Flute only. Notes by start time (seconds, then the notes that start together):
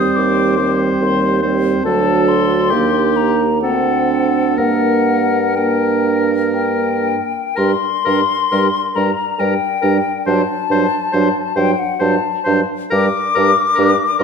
Already playing: D#6
0.16 D6
1.02 C6
1.84 A5
2.28 C6
3.16 A#5
3.62 F#5
4.58 F#5
5.56 G5
6.54 G5
7.57 C6
8.96 A#5
9.40 G5
10.27 A5
11.57 G5
11.79 F#5
12.01 A5
12.93 D6